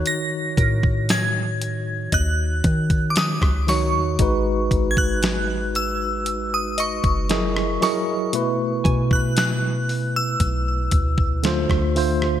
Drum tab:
HH |x-x-x-x-x-xxx-o-|x-x-x-x-x-xxx-o-|x-x-x-o-x-x-x-o-|
SD |----o-------oro-|----o-------oro-|----o-------or-r|
BD |--oo----o-oo-o--|o-oo-------o----|--oo----o-oo-o--|